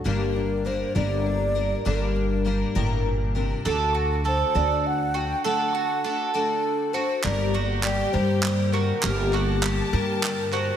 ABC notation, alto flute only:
X:1
M:6/8
L:1/8
Q:3/8=67
K:Gm
V:1 name="Alto flute"
B2 c d3 | B4 z2 | A2 c d ^f g | ^f3 A2 c |
d2 d c2 B | G3 B2 c |]